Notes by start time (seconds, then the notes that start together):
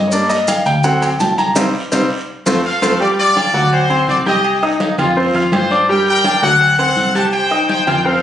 Already playing: G2 D#5
0.08 G3 C#5
0.12 A#3 D4 D5, high conga, long guiro, maracas
0.30 D#5, high conga, maracas
0.48 F5, high conga, low agogo, short guiro, maracas
0.66 D2 G5, short guiro, maracas
0.84 F#3 A3 C4 F#5, high conga, low agogo, long guiro, maracas
1.02 G5, high conga, low agogo, maracas
1.20 C2 A5, high conga, low timbale, short guiro, maracas
1.38 A#5, high conga, low agogo, short guiro, maracas
1.56 C2 G3 C4 D#4, high conga, high timbale, long guiro, maracas
1.92 C2 G3 C4 D#4, high conga, high timbale, long guiro, maracas
2.46 F2 A3 C4 F4, high conga, high timbale, long guiro, maracas
2.66 A4 F5
2.82 F2 A3 C4 F4, high conga, high timbale, long guiro, maracas
3.00 G3 G4 D5 G5, high conga, long guiro
3.19 F4 D5, high conga
3.36 D4 D5 D6, high conga, low agogo, short guiro
3.54 D2 F#3 F#4 F#5, short guiro
3.72 F#4 C5, high conga, low agogo, long guiro
3.90 C4 C5 C6, high conga, low agogo
4.08 C2 F#4 D5, high conga, short guiro
4.26 G4 D#5 G5 G6, high conga, low agogo, short guiro
4.44 high conga, low agogo, long guiro
4.62 D#4 D#5 D#6, high conga, low agogo
4.80 D#4, high conga, low agogo, short guiro
4.98 F2 F4 F5 F6, high conga, low conga, low agogo, short guiro
5.16 C4 F4 C5 C6, high conga, long guiro
5.34 F2 F4 F5 F6, high conga, low agogo
5.52 G2 F4 C5, high conga, low timbale, low agogo, short guiro
5.70 D4 D5 D6, high conga, short guiro
5.88 G3 G4 A#4 G5, high conga, long guiro
6.06 A#4 G5, high conga
6.24 D4 D5 D6, high conga, low agogo, short guiro
6.42 D2 F#3 F#4 A4 F#5, short guiro
6.61 high conga, low agogo, long guiro
6.79 C4 A4 C5 F#5 C6, high conga, low agogo
6.96 C2, high conga, short guiro
7.15 G4 C5 G5 A5 G6, high conga, low agogo, short guiro
7.32 C5 G5, high conga, low agogo, long guiro
7.51 D#4 D#5 D#6, high conga, low agogo
7.69 C5 G5, high conga, low agogo, short guiro
7.86 F2 F4 A#4 F5 G5 F6, high conga, low conga, low agogo, short guiro
8.05 C4 A4 C5 F5 C6, high conga, long guiro